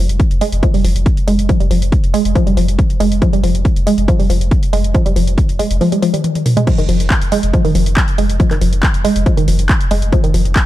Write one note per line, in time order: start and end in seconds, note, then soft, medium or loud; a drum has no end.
0.09 0.19 F1 medium
0.09 closed hi-hat medium
0.20 kick loud
0.20 closed hi-hat medium
0.31 0.41 F1 medium
0.31 closed hi-hat medium
0.41 0.45 G#3 loud
0.41 open hi-hat loud
0.52 0.63 F1 medium
0.52 closed hi-hat medium
0.63 0.70 F3 loud
0.63 kick loud
0.63 closed hi-hat medium
0.74 0.84 F1 medium
0.74 0.80 G3 medium
0.74 open hi-hat medium
0.84 0.95 F1 loud
0.84 0.91 F3 medium
0.84 open hi-hat loud
0.95 1.06 F1 medium
0.95 closed hi-hat medium
1.06 kick loud
1.06 closed hi-hat medium
1.17 closed hi-hat medium
1.27 1.38 F1 loud
1.27 1.32 G#3 loud
1.27 open hi-hat loud
1.38 1.49 F1 medium
1.38 closed hi-hat medium
1.49 1.56 F3 loud
1.49 kick loud
1.49 closed hi-hat medium
1.60 1.70 F1 medium
1.60 1.67 G3 medium
1.60 closed hi-hat medium
1.71 1.81 F1 loud
1.71 1.78 F3 medium
1.71 open hi-hat loud
1.82 1.92 F1 medium
1.82 closed hi-hat medium
1.92 kick loud
1.92 closed hi-hat medium
2.03 2.14 F1 medium
2.03 closed hi-hat medium
2.14 2.18 G#3 loud
2.14 open hi-hat loud
2.25 2.35 F1 medium
2.25 closed hi-hat medium
2.35 2.42 F3 loud
2.35 kick loud
2.35 closed hi-hat medium
2.46 2.56 F1 medium
2.46 2.53 G3 medium
2.46 closed hi-hat medium
2.57 2.67 F1 loud
2.57 2.64 F3 medium
2.57 open hi-hat loud
2.68 2.78 F1 medium
2.68 closed hi-hat medium
2.79 kick loud
2.79 closed hi-hat medium
2.90 closed hi-hat medium
3.00 3.11 F1 medium
3.00 3.04 G#3 loud
3.00 open hi-hat loud
3.11 3.22 F1 medium
3.11 closed hi-hat medium
3.22 3.29 F3 loud
3.22 kick loud
3.22 closed hi-hat medium
3.33 3.43 F1 medium
3.33 3.39 G3 medium
3.33 closed hi-hat medium
3.43 3.54 F1 loud
3.43 3.50 F3 medium
3.43 open hi-hat medium
3.55 3.65 F1 medium
3.55 closed hi-hat medium
3.65 kick loud
3.65 closed hi-hat medium
3.76 3.86 F1 medium
3.76 closed hi-hat medium
3.87 3.91 G#3 loud
3.87 open hi-hat loud
3.98 4.08 F1 medium
3.98 closed hi-hat medium
4.08 4.15 F3 loud
4.08 kick loud
4.08 closed hi-hat medium
4.19 4.29 F1 medium
4.19 4.26 G3 medium
4.19 open hi-hat medium
4.30 4.40 F1 loud
4.30 4.37 F3 medium
4.30 open hi-hat loud
4.41 4.51 F1 medium
4.41 closed hi-hat medium
4.51 kick loud
4.51 closed hi-hat medium
4.63 closed hi-hat medium
4.73 4.84 F1 loud
4.73 4.77 G#3 loud
4.73 open hi-hat loud
4.84 4.94 F1 medium
4.84 closed hi-hat medium
4.95 5.01 F3 loud
4.95 kick loud
4.95 closed hi-hat medium
5.06 5.16 F1 medium
5.06 5.12 G3 medium
5.06 closed hi-hat medium
5.16 5.27 F1 loud
5.16 5.23 F3 medium
5.16 open hi-hat medium
5.27 5.38 F1 medium
5.27 closed hi-hat medium
5.38 kick loud
5.38 closed hi-hat medium
5.49 5.59 F1 medium
5.49 closed hi-hat medium
5.59 5.63 G#3 loud
5.59 open hi-hat loud
5.71 5.81 F1 medium
5.71 closed hi-hat medium
5.81 5.88 F3 loud
5.81 open hi-hat medium
5.81 high tom medium
5.92 5.98 G3 medium
5.92 closed hi-hat medium
5.92 high tom medium
6.02 6.13 F3 loud
6.02 open hi-hat loud
6.02 high tom medium
6.14 6.20 G3 medium
6.14 closed hi-hat medium
6.14 mid tom medium
6.24 closed hi-hat medium
6.24 mid tom medium
6.35 closed hi-hat medium
6.35 mid tom medium
6.46 6.50 D#3 medium
6.46 mid tom loud
6.46 open hi-hat loud
6.57 6.63 G#3 loud
6.57 closed hi-hat medium
6.57 mid tom medium
6.67 6.74 F3 loud
6.67 kick loud
6.67 closed hi-hat medium
6.67 crash medium
6.78 6.88 F1 medium
6.78 6.85 D#3 loud
6.78 closed hi-hat medium
6.89 6.99 F1 loud
6.89 6.96 F3 medium
6.89 open hi-hat medium
7.00 7.10 F1 medium
7.00 closed hi-hat medium
7.10 kick loud
7.10 clap loud
7.10 closed hi-hat medium
7.22 7.32 F1 medium
7.22 closed hi-hat medium
7.32 7.36 G#3 loud
7.32 open hi-hat loud
7.43 7.53 F1 medium
7.43 closed hi-hat medium
7.54 7.60 F3 loud
7.54 kick loud
7.54 closed hi-hat medium
7.65 7.75 F1 medium
7.65 7.71 D#3 loud
7.65 open hi-hat medium
7.75 7.86 F1 medium
7.75 7.82 F3 medium
7.75 open hi-hat loud
7.86 7.97 F1 medium
7.86 closed hi-hat medium
7.97 kick loud
7.97 clap loud
7.97 closed hi-hat medium
8.08 closed hi-hat medium
8.18 8.29 F1 loud
8.18 8.22 G#3 loud
8.18 open hi-hat loud
8.29 8.40 F1 medium
8.29 closed hi-hat medium
8.40 8.47 F3 loud
8.40 kick loud
8.40 closed hi-hat medium
8.51 8.61 F1 medium
8.51 8.57 D#3 loud
8.51 clap soft
8.51 closed hi-hat medium
8.61 8.72 F1 medium
8.61 8.68 F3 medium
8.61 open hi-hat loud
8.73 8.83 F1 medium
8.73 closed hi-hat medium
8.83 kick loud
8.83 clap loud
8.83 closed hi-hat medium
8.94 9.04 F1 medium
8.94 closed hi-hat medium
9.04 9.09 G#3 loud
9.04 open hi-hat loud
9.16 9.26 F1 medium
9.16 closed hi-hat medium
9.26 9.33 F3 loud
9.26 kick loud
9.26 closed hi-hat medium
9.37 9.47 F1 medium
9.37 9.44 D#3 loud
9.37 closed hi-hat medium
9.48 9.58 F1 medium
9.48 9.55 F3 medium
9.48 open hi-hat loud
9.59 9.69 F1 medium
9.59 closed hi-hat medium
9.69 kick loud
9.69 clap loud
9.69 closed hi-hat medium
9.81 closed hi-hat medium
9.91 10.01 F1 loud
9.91 9.95 G#3 loud
9.91 open hi-hat loud
10.02 10.12 F1 medium
10.02 closed hi-hat medium
10.12 10.19 F3 loud
10.12 kick loud
10.12 closed hi-hat medium
10.24 10.33 F1 medium
10.24 10.30 D#3 loud
10.24 closed hi-hat medium
10.34 10.45 F1 loud
10.34 10.41 F3 medium
10.34 open hi-hat loud
10.45 10.55 F1 medium
10.45 closed hi-hat medium
10.56 kick loud
10.56 clap loud
10.56 closed hi-hat medium